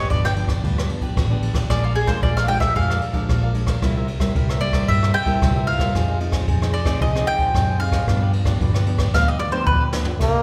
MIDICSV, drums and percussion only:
0, 0, Header, 1, 2, 480
1, 0, Start_track
1, 0, Tempo, 530973
1, 1538, Time_signature, 4, 2, 24, 8
1, 9425, End_track
2, 0, Start_track
2, 0, Title_t, "Drums"
2, 94, Note_on_c, 9, 51, 47
2, 96, Note_on_c, 9, 36, 78
2, 185, Note_off_c, 9, 51, 0
2, 187, Note_off_c, 9, 36, 0
2, 222, Note_on_c, 9, 37, 64
2, 313, Note_off_c, 9, 37, 0
2, 327, Note_on_c, 9, 51, 47
2, 417, Note_off_c, 9, 51, 0
2, 437, Note_on_c, 9, 36, 65
2, 438, Note_on_c, 9, 37, 60
2, 438, Note_on_c, 9, 51, 47
2, 527, Note_off_c, 9, 36, 0
2, 528, Note_off_c, 9, 37, 0
2, 528, Note_off_c, 9, 51, 0
2, 577, Note_on_c, 9, 36, 62
2, 579, Note_on_c, 9, 51, 49
2, 668, Note_off_c, 9, 36, 0
2, 669, Note_off_c, 9, 51, 0
2, 707, Note_on_c, 9, 37, 69
2, 798, Note_off_c, 9, 37, 0
2, 809, Note_on_c, 9, 51, 48
2, 899, Note_off_c, 9, 51, 0
2, 917, Note_on_c, 9, 36, 59
2, 917, Note_on_c, 9, 51, 49
2, 1007, Note_off_c, 9, 36, 0
2, 1007, Note_off_c, 9, 51, 0
2, 1057, Note_on_c, 9, 36, 84
2, 1057, Note_on_c, 9, 37, 65
2, 1057, Note_on_c, 9, 51, 48
2, 1147, Note_off_c, 9, 36, 0
2, 1148, Note_off_c, 9, 37, 0
2, 1148, Note_off_c, 9, 51, 0
2, 1288, Note_on_c, 9, 51, 46
2, 1378, Note_off_c, 9, 51, 0
2, 1395, Note_on_c, 9, 37, 66
2, 1395, Note_on_c, 9, 51, 48
2, 1396, Note_on_c, 9, 36, 67
2, 1485, Note_off_c, 9, 37, 0
2, 1485, Note_off_c, 9, 51, 0
2, 1487, Note_off_c, 9, 36, 0
2, 1535, Note_on_c, 9, 37, 64
2, 1535, Note_on_c, 9, 51, 46
2, 1536, Note_on_c, 9, 36, 62
2, 1626, Note_off_c, 9, 37, 0
2, 1626, Note_off_c, 9, 51, 0
2, 1627, Note_off_c, 9, 36, 0
2, 1765, Note_on_c, 9, 51, 46
2, 1855, Note_off_c, 9, 51, 0
2, 1874, Note_on_c, 9, 37, 62
2, 1874, Note_on_c, 9, 51, 43
2, 1875, Note_on_c, 9, 36, 64
2, 1965, Note_off_c, 9, 37, 0
2, 1965, Note_off_c, 9, 51, 0
2, 1966, Note_off_c, 9, 36, 0
2, 2013, Note_on_c, 9, 51, 43
2, 2015, Note_on_c, 9, 36, 81
2, 2103, Note_off_c, 9, 51, 0
2, 2106, Note_off_c, 9, 36, 0
2, 2142, Note_on_c, 9, 37, 64
2, 2233, Note_off_c, 9, 37, 0
2, 2247, Note_on_c, 9, 51, 45
2, 2337, Note_off_c, 9, 51, 0
2, 2356, Note_on_c, 9, 36, 64
2, 2357, Note_on_c, 9, 37, 63
2, 2357, Note_on_c, 9, 51, 43
2, 2447, Note_off_c, 9, 36, 0
2, 2448, Note_off_c, 9, 37, 0
2, 2448, Note_off_c, 9, 51, 0
2, 2495, Note_on_c, 9, 36, 64
2, 2495, Note_on_c, 9, 51, 46
2, 2586, Note_off_c, 9, 36, 0
2, 2586, Note_off_c, 9, 51, 0
2, 2622, Note_on_c, 9, 37, 64
2, 2713, Note_off_c, 9, 37, 0
2, 2726, Note_on_c, 9, 51, 45
2, 2817, Note_off_c, 9, 51, 0
2, 2834, Note_on_c, 9, 51, 42
2, 2835, Note_on_c, 9, 36, 63
2, 2924, Note_off_c, 9, 51, 0
2, 2926, Note_off_c, 9, 36, 0
2, 2976, Note_on_c, 9, 36, 79
2, 2976, Note_on_c, 9, 37, 62
2, 2976, Note_on_c, 9, 51, 44
2, 3067, Note_off_c, 9, 36, 0
2, 3067, Note_off_c, 9, 37, 0
2, 3067, Note_off_c, 9, 51, 0
2, 3205, Note_on_c, 9, 51, 47
2, 3296, Note_off_c, 9, 51, 0
2, 3315, Note_on_c, 9, 37, 65
2, 3315, Note_on_c, 9, 51, 46
2, 3316, Note_on_c, 9, 36, 64
2, 3405, Note_off_c, 9, 37, 0
2, 3405, Note_off_c, 9, 51, 0
2, 3406, Note_off_c, 9, 36, 0
2, 3455, Note_on_c, 9, 36, 65
2, 3455, Note_on_c, 9, 37, 65
2, 3455, Note_on_c, 9, 51, 45
2, 3546, Note_off_c, 9, 36, 0
2, 3546, Note_off_c, 9, 37, 0
2, 3546, Note_off_c, 9, 51, 0
2, 3687, Note_on_c, 9, 51, 46
2, 3777, Note_off_c, 9, 51, 0
2, 3796, Note_on_c, 9, 36, 64
2, 3797, Note_on_c, 9, 37, 67
2, 3797, Note_on_c, 9, 51, 49
2, 3886, Note_off_c, 9, 36, 0
2, 3887, Note_off_c, 9, 37, 0
2, 3887, Note_off_c, 9, 51, 0
2, 3936, Note_on_c, 9, 36, 77
2, 3936, Note_on_c, 9, 51, 48
2, 4027, Note_off_c, 9, 36, 0
2, 4027, Note_off_c, 9, 51, 0
2, 4061, Note_on_c, 9, 37, 68
2, 4151, Note_off_c, 9, 37, 0
2, 4165, Note_on_c, 9, 51, 51
2, 4255, Note_off_c, 9, 51, 0
2, 4275, Note_on_c, 9, 37, 68
2, 4275, Note_on_c, 9, 51, 51
2, 4276, Note_on_c, 9, 36, 64
2, 4366, Note_off_c, 9, 36, 0
2, 4366, Note_off_c, 9, 37, 0
2, 4366, Note_off_c, 9, 51, 0
2, 4416, Note_on_c, 9, 36, 65
2, 4417, Note_on_c, 9, 51, 46
2, 4507, Note_off_c, 9, 36, 0
2, 4508, Note_off_c, 9, 51, 0
2, 4545, Note_on_c, 9, 37, 62
2, 4635, Note_off_c, 9, 37, 0
2, 4645, Note_on_c, 9, 51, 47
2, 4735, Note_off_c, 9, 51, 0
2, 4757, Note_on_c, 9, 36, 64
2, 4757, Note_on_c, 9, 51, 46
2, 4847, Note_off_c, 9, 51, 0
2, 4848, Note_off_c, 9, 36, 0
2, 4898, Note_on_c, 9, 36, 83
2, 4900, Note_on_c, 9, 37, 66
2, 4900, Note_on_c, 9, 51, 50
2, 4989, Note_off_c, 9, 36, 0
2, 4990, Note_off_c, 9, 37, 0
2, 4990, Note_off_c, 9, 51, 0
2, 5127, Note_on_c, 9, 51, 52
2, 5217, Note_off_c, 9, 51, 0
2, 5237, Note_on_c, 9, 36, 68
2, 5240, Note_on_c, 9, 37, 62
2, 5240, Note_on_c, 9, 51, 50
2, 5328, Note_off_c, 9, 36, 0
2, 5330, Note_off_c, 9, 37, 0
2, 5330, Note_off_c, 9, 51, 0
2, 5378, Note_on_c, 9, 36, 68
2, 5378, Note_on_c, 9, 37, 60
2, 5378, Note_on_c, 9, 51, 48
2, 5468, Note_off_c, 9, 36, 0
2, 5468, Note_off_c, 9, 37, 0
2, 5468, Note_off_c, 9, 51, 0
2, 5608, Note_on_c, 9, 51, 46
2, 5698, Note_off_c, 9, 51, 0
2, 5714, Note_on_c, 9, 37, 64
2, 5714, Note_on_c, 9, 51, 50
2, 5716, Note_on_c, 9, 36, 68
2, 5804, Note_off_c, 9, 37, 0
2, 5804, Note_off_c, 9, 51, 0
2, 5806, Note_off_c, 9, 36, 0
2, 5857, Note_on_c, 9, 36, 85
2, 5858, Note_on_c, 9, 51, 49
2, 5948, Note_off_c, 9, 36, 0
2, 5948, Note_off_c, 9, 51, 0
2, 5985, Note_on_c, 9, 37, 70
2, 6076, Note_off_c, 9, 37, 0
2, 6088, Note_on_c, 9, 51, 48
2, 6178, Note_off_c, 9, 51, 0
2, 6195, Note_on_c, 9, 37, 70
2, 6195, Note_on_c, 9, 51, 47
2, 6197, Note_on_c, 9, 36, 68
2, 6286, Note_off_c, 9, 37, 0
2, 6286, Note_off_c, 9, 51, 0
2, 6287, Note_off_c, 9, 36, 0
2, 6337, Note_on_c, 9, 51, 46
2, 6338, Note_on_c, 9, 36, 64
2, 6428, Note_off_c, 9, 36, 0
2, 6428, Note_off_c, 9, 51, 0
2, 6467, Note_on_c, 9, 37, 65
2, 6558, Note_off_c, 9, 37, 0
2, 6572, Note_on_c, 9, 51, 43
2, 6662, Note_off_c, 9, 51, 0
2, 6679, Note_on_c, 9, 36, 66
2, 6682, Note_on_c, 9, 51, 46
2, 6770, Note_off_c, 9, 36, 0
2, 6772, Note_off_c, 9, 51, 0
2, 6820, Note_on_c, 9, 36, 85
2, 6825, Note_on_c, 9, 37, 68
2, 6825, Note_on_c, 9, 51, 48
2, 6911, Note_off_c, 9, 36, 0
2, 6915, Note_off_c, 9, 37, 0
2, 6915, Note_off_c, 9, 51, 0
2, 7055, Note_on_c, 9, 51, 44
2, 7146, Note_off_c, 9, 51, 0
2, 7160, Note_on_c, 9, 36, 68
2, 7161, Note_on_c, 9, 37, 69
2, 7161, Note_on_c, 9, 51, 46
2, 7250, Note_off_c, 9, 36, 0
2, 7251, Note_off_c, 9, 37, 0
2, 7251, Note_off_c, 9, 51, 0
2, 7299, Note_on_c, 9, 36, 66
2, 7302, Note_on_c, 9, 37, 66
2, 7302, Note_on_c, 9, 51, 44
2, 7390, Note_off_c, 9, 36, 0
2, 7393, Note_off_c, 9, 37, 0
2, 7393, Note_off_c, 9, 51, 0
2, 7532, Note_on_c, 9, 51, 47
2, 7622, Note_off_c, 9, 51, 0
2, 7640, Note_on_c, 9, 36, 68
2, 7643, Note_on_c, 9, 37, 68
2, 7643, Note_on_c, 9, 51, 49
2, 7730, Note_off_c, 9, 36, 0
2, 7733, Note_off_c, 9, 37, 0
2, 7733, Note_off_c, 9, 51, 0
2, 7781, Note_on_c, 9, 36, 86
2, 7781, Note_on_c, 9, 51, 47
2, 7871, Note_off_c, 9, 36, 0
2, 7872, Note_off_c, 9, 51, 0
2, 7905, Note_on_c, 9, 37, 68
2, 7996, Note_off_c, 9, 37, 0
2, 8013, Note_on_c, 9, 51, 51
2, 8104, Note_off_c, 9, 51, 0
2, 8120, Note_on_c, 9, 36, 68
2, 8122, Note_on_c, 9, 37, 69
2, 8122, Note_on_c, 9, 51, 50
2, 8210, Note_off_c, 9, 36, 0
2, 8212, Note_off_c, 9, 37, 0
2, 8212, Note_off_c, 9, 51, 0
2, 8261, Note_on_c, 9, 36, 71
2, 8262, Note_on_c, 9, 38, 49
2, 8352, Note_off_c, 9, 36, 0
2, 8353, Note_off_c, 9, 38, 0
2, 8491, Note_on_c, 9, 47, 57
2, 8581, Note_off_c, 9, 47, 0
2, 8602, Note_on_c, 9, 47, 53
2, 8693, Note_off_c, 9, 47, 0
2, 8742, Note_on_c, 9, 36, 87
2, 8832, Note_off_c, 9, 36, 0
2, 8973, Note_on_c, 9, 38, 74
2, 9063, Note_off_c, 9, 38, 0
2, 9083, Note_on_c, 9, 43, 63
2, 9174, Note_off_c, 9, 43, 0
2, 9224, Note_on_c, 9, 36, 60
2, 9225, Note_on_c, 9, 37, 60
2, 9225, Note_on_c, 9, 49, 68
2, 9314, Note_off_c, 9, 36, 0
2, 9315, Note_off_c, 9, 37, 0
2, 9315, Note_off_c, 9, 49, 0
2, 9425, End_track
0, 0, End_of_file